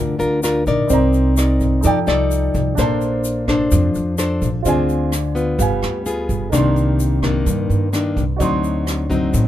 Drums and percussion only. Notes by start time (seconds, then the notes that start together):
0.20 closed hi-hat, shaker
0.43 cross-stick, closed hi-hat, shaker
0.67 kick, closed hi-hat, shaker
0.89 kick, closed hi-hat, shaker
1.13 closed hi-hat, shaker
1.37 cross-stick, closed hi-hat, shaker
1.61 kick, closed hi-hat, shaker
1.83 kick, closed hi-hat, shaker
2.07 cross-stick, closed hi-hat, shaker
2.31 closed hi-hat, shaker
2.54 kick, closed hi-hat, shaker
2.78 kick, cross-stick, closed hi-hat, shaker
3.01 closed hi-hat, shaker
3.24 closed hi-hat, shaker
3.48 kick, cross-stick, closed hi-hat, shaker
3.71 kick, closed hi-hat, shaker
3.95 closed hi-hat, shaker
4.18 cross-stick, closed hi-hat, shaker
4.42 kick, closed hi-hat, shaker
4.65 kick, closed hi-hat, shaker
4.89 closed hi-hat, shaker
5.12 cross-stick, closed hi-hat, shaker
5.36 closed hi-hat, shaker
5.59 kick, closed hi-hat, shaker
5.82 cross-stick, closed hi-hat, shaker
6.06 closed hi-hat, shaker
6.29 kick, closed hi-hat, shaker
6.53 kick, cross-stick, closed hi-hat, shaker
6.76 closed hi-hat, shaker
6.99 closed hi-hat, shaker
7.22 kick, cross-stick, closed hi-hat, shaker
7.46 kick, closed hi-hat, shaker
7.70 closed hi-hat, shaker
7.93 cross-stick, closed hi-hat, shaker
8.17 kick, closed hi-hat, shaker
8.40 kick, closed hi-hat, shaker
8.64 closed hi-hat, shaker
8.87 cross-stick, closed hi-hat, shaker
9.10 kick, closed hi-hat, shaker
9.34 kick, closed hi-hat, shaker